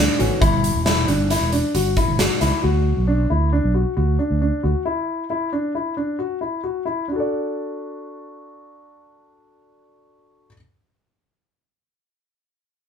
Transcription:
Already playing: grand piano D4
0.19 fretless electric bass A1, tine electric piano D3 B3 C#4, grand piano F#4, closed hi-hat
0.41 fretless electric bass G1, grand piano E4, kick, closed hi-hat
0.64 closed hi-hat
0.75 fretless electric bass E1
0.85 grand piano E4, snare, closed hi-hat
1.08 fretless electric bass G1, grand piano D4, closed hi-hat
1.30 grand piano E4, snare, closed hi-hat
1.41 fretless electric bass E1
1.52 grand piano D4, closed hi-hat
1.75 fretless electric bass G1, grand piano F#4, closed hi-hat
1.97 grand piano E4, kick, closed hi-hat
2.08 fretless electric bass G1
2.19 grand piano F#4, snare, closed hi-hat
2.41 fretless electric bass C#2, grand piano E4, snare, closed hi-hat
2.63 fretless electric bass D2, grand piano F#4
2.97 fretless electric bass B1
3.07 grand piano D4
3.30 fretless electric bass D2, grand piano E4
3.52 grand piano D4
3.64 fretless electric bass B1
3.74 grand piano F#4
3.97 fretless electric bass D2, grand piano F#4
4.19 grand piano D4
4.31 fretless electric bass D2
4.41 grand piano D4
4.63 fretless electric bass D2, grand piano F#4
4.85 grand piano E4
5.30 grand piano E4
5.52 grand piano D4
5.75 grand piano E4
5.97 grand piano D4
6.19 grand piano F#4
6.41 grand piano E4
6.64 grand piano F#4
6.85 grand piano E4
7.08 grand piano D4 F#4
7.16 grand piano A4 D5

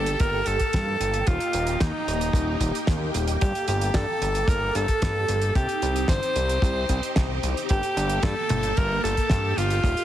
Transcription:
Already playing: analog synth bass G1, string machine A#3 G4 A4, alto saxophone A4
0.06 closed hi-hat
0.20 analog synth bass G1, alto saxophone A#4, kick, closed hi-hat
0.46 analog synth bass G1, alto saxophone A4, closed hi-hat
0.59 kick, closed hi-hat
0.73 analog synth bass G2, kick, snare, closed hi-hat
1.00 analog synth bass G1, closed hi-hat
1.14 closed hi-hat
1.27 analog synth bass D#1, string machine D#4 G4, alto saxophone F4, kick, closed hi-hat
1.40 closed hi-hat
1.53 analog synth bass D#1, closed hi-hat
1.67 closed hi-hat
1.80 analog synth bass D#2, alto saxophone D#4, kick, snare, closed hi-hat
2.07 analog synth bass D#1, closed hi-hat
2.21 closed hi-hat
2.33 analog synth bass D#1, kick, closed hi-hat
2.60 analog synth bass D#1, kick, closed hi-hat
2.75 closed hi-hat
2.87 analog synth bass D#2, kick, snare, closed hi-hat
3.14 analog synth bass D#1, closed hi-hat
3.28 closed hi-hat
3.41 analog synth bass G1, alto saxophone G4, string machine A4, kick, closed hi-hat
3.55 closed hi-hat
3.68 analog synth bass G1, alto saxophone G4, closed hi-hat
3.81 closed hi-hat
3.94 analog synth bass G2, alto saxophone A4, kick, snare, closed hi-hat
4.21 analog synth bass G1, closed hi-hat
4.35 closed hi-hat
4.48 analog synth bass G1, alto saxophone A#4, kick, closed hi-hat
4.75 analog synth bass G1, alto saxophone A4, closed hi-hat
4.88 kick, closed hi-hat
5.02 analog synth bass G2, kick, snare, closed hi-hat
5.28 analog synth bass G1, closed hi-hat
5.42 closed hi-hat
5.55 analog synth bass C2, string machine C4 D#4 G4, alto saxophone G4, kick, closed hi-hat
5.69 closed hi-hat
5.82 analog synth bass C2, closed hi-hat
5.96 closed hi-hat
6.08 analog synth bass G1, alto saxophone C5, kick, snare, closed hi-hat
6.23 closed hi-hat
6.36 analog synth bass C2, closed hi-hat
6.49 closed hi-hat
6.62 analog synth bass C2, kick, closed hi-hat
6.89 analog synth bass C2, kick, closed hi-hat
7.03 closed hi-hat
7.16 analog synth bass C2, kick, snare, closed hi-hat
7.43 analog synth bass C2, closed hi-hat
7.57 closed hi-hat
7.69 analog synth bass G1, string machine A#3 A4, alto saxophone G4, kick, closed hi-hat
7.83 closed hi-hat
7.97 analog synth bass G1, closed hi-hat
8.10 closed hi-hat
8.23 analog synth bass G2, alto saxophone A4, kick, snare, closed hi-hat
8.49 analog synth bass G1, closed hi-hat, high tom
8.63 closed hi-hat
8.77 analog synth bass G1, alto saxophone A#4, kick, closed hi-hat
9.04 analog synth bass G1, alto saxophone A4, closed hi-hat
9.17 kick, closed hi-hat
9.30 analog synth bass G2, kick, snare, closed hi-hat
9.57 analog synth bass G1, alto saxophone F4, closed hi-hat
9.70 closed hi-hat
9.84 analog synth bass D#1, string machine A#3 D#4, kick, closed hi-hat
9.97 closed hi-hat

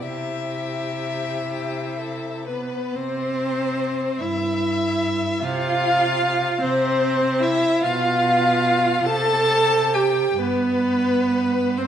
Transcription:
0.01 cello C3, viola E4, violin G4 E5
1.48 violin G4
1.98 violin A4
2.48 viola B3, violin B4
2.95 cello C3, viola C4, violin C5
4.20 cello G2, viola E4, violin E5
5.42 cello C3, viola F4, violin F5
6.61 cello C3, viola C4, violin C5
7.40 viola E4, violin E5
7.83 cello B2, viola F4, violin F5
9.05 cello C3, viola A4, violin A5
9.94 viola G4, violin G5
10.39 cello G2, viola B3, violin B4
11.77 viola C4, violin C5

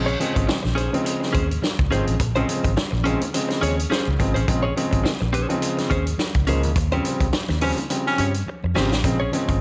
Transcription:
Already playing: fingered electric bass A#1
0.06 clean electric guitar C#4 G#4 C#5, closed hi-hat
0.19 upright piano C#3 F3 G#3 C4, muted clean electric guitar stroke, closed hi-hat, high conga
0.35 fingered electric bass G#1, muted clean electric guitar stroke, kick, closed hi-hat, high conga
0.47 muted clean electric guitar stroke, muted fingered electric bass stroke, snare, muted conga, high conga
0.63 fingered electric bass A#1, muted clean electric guitar stroke, snare, high conga
0.75 clean electric guitar C#4 G#4 C5, closed hi-hat, low conga
0.92 upright piano C#3 F3 G#3 C4, muted clean electric guitar stroke, closed hi-hat, low conga
1.05 muted clean electric guitar stroke, closed hi-hat
1.20 muted clean electric guitar stroke, snare, muted conga
1.33 fingered electric bass D#2, clean electric guitar C#4 G#4 C5, kick, closed hi-hat, high conga
1.49 muted clean electric guitar stroke, closed hi-hat
1.62 muted clean electric guitar stroke, snare, muted conga, high conga
1.79 fingered electric bass C#2, kick
1.91 fingered electric bass G#1, upright piano C#3 F3 G#3 C4, clean electric guitar C#4 G#4 C5, closed hi-hat, low conga
2.07 fingered electric bass A1, muted clean electric guitar stroke, closed hi-hat
2.20 fingered electric bass A#1, muted clean electric guitar stroke, kick, closed hi-hat, muted conga
2.36 upright piano C#3 F3 G#3 C4, clean electric guitar C#4 G#4 C5, closed hi-hat
2.48 muted clean electric guitar stroke, closed hi-hat, high conga
2.64 fingered electric bass G#1, muted clean electric guitar stroke, kick, closed hi-hat, high conga
2.77 muted clean electric guitar stroke, muted fingered electric bass stroke, snare, muted conga, high conga
2.91 fingered electric bass A#1, muted clean electric guitar stroke, high conga
3.04 upright piano C#3 F3 G#3 C4, clean electric guitar C#4 G#4 C5, closed hi-hat, low conga
3.21 muted clean electric guitar stroke, closed hi-hat, low conga
3.33 upright piano C#3 F3 G#3 C4, muted clean electric guitar stroke, closed hi-hat
3.49 muted clean electric guitar stroke, snare, closed hi-hat, muted conga
3.61 fingered electric bass D#2, clean electric guitar C#4 G#4 C#5, closed hi-hat, high conga
3.77 muted clean electric guitar stroke, closed hi-hat
3.90 clean electric guitar C#4 G#4 C5, snare, high conga
4.07 fingered electric bass C#2, muted conga
4.19 fingered electric bass G#1, upright piano C#3 F3 G#3 C4, muted clean electric guitar stroke, kick, closed hi-hat, low conga
4.34 fingered electric bass A1, clean electric guitar C#4 G#4 C5, closed hi-hat
4.47 fingered electric bass A#1, upright piano C#3 F3 G#3 C4, muted clean electric guitar stroke, kick, closed hi-hat, muted conga
4.63 clean electric guitar C#4 G#4 C#5, muted conga
4.75 upright piano C#3 F3 G#3 C4, muted clean electric guitar stroke, closed hi-hat, high conga
4.91 fingered electric bass G#1, muted clean electric guitar stroke, kick, closed hi-hat, high conga
5.04 muted clean electric guitar stroke, muted fingered electric bass stroke, snare, muted conga, high conga
5.21 fingered electric bass A#1, muted clean electric guitar stroke, muted conga, high conga
5.33 clean electric guitar C#4 G#4 C5, closed hi-hat, low conga
5.48 upright piano C#3 F3 G#3 C4, muted clean electric guitar stroke, closed hi-hat, low conga
5.62 muted clean electric guitar stroke, closed hi-hat, muted conga
5.77 muted clean electric guitar stroke, snare, closed hi-hat, muted conga
5.90 fingered electric bass D#2, clean electric guitar C#4 G#4 C5, kick, closed hi-hat, high conga
6.06 muted clean electric guitar stroke, closed hi-hat
6.18 muted clean electric guitar stroke, snare, muted conga, high conga
6.34 fingered electric bass C#2, kick, closed hi-hat, muted conga
6.47 fingered electric bass C#2, upright piano C#3 F3 G#3 A#3, clean electric guitar C#4 G#4 C5, closed hi-hat, low conga
6.63 fingered electric bass D2, muted clean electric guitar stroke, closed hi-hat
6.76 fingered electric bass D#2, muted clean electric guitar stroke, kick, closed hi-hat
6.91 upright piano C#3 F3 G3 C4, clean electric guitar C#4 G4 C5, closed hi-hat
7.04 muted clean electric guitar stroke, closed hi-hat, high conga
7.20 fingered electric bass C#2, muted clean electric guitar stroke, kick, closed hi-hat, high conga
7.33 muted clean electric guitar stroke, muted fingered electric bass stroke, snare, muted conga, high conga
7.49 fingered electric bass D#2, muted clean electric guitar stroke, snare, muted conga, high conga
7.61 upright piano C#3 F3 G3 C4, clean electric guitar C#4 G4 C5, baritone saxophone C#4, open hi-hat, low conga
7.77 muted clean electric guitar stroke, closed hi-hat, low conga
7.90 upright piano C#3 F3 G3 C4, muted clean electric guitar stroke, closed hi-hat
8.06 baritone saxophone C#4, snare
8.18 fingered electric bass G2, clean electric guitar C#4 G4 C#5, closed hi-hat, high conga
8.34 muted clean electric guitar stroke, closed hi-hat
8.46 muted clean electric guitar stroke, muted conga, high conga
8.62 fingered electric bass F2, muted clean electric guitar stroke, muted conga
8.74 fingered electric bass G#1, upright piano C#3 F3 G3 C4, clean electric guitar C#4 G4 C5, snare, low conga
8.92 fingered electric bass A1, muted clean electric guitar stroke, snare
9.04 fingered electric bass A#1, upright piano C#3 F3 G#3 C4, muted clean electric guitar stroke, kick, closed hi-hat
9.20 clean electric guitar C#4 G#4 C#5
9.32 upright piano C#3 F3 G#3 C4, muted clean electric guitar stroke, closed hi-hat, high conga
9.48 fingered electric bass G#1, muted clean electric guitar stroke, kick, closed hi-hat, high conga

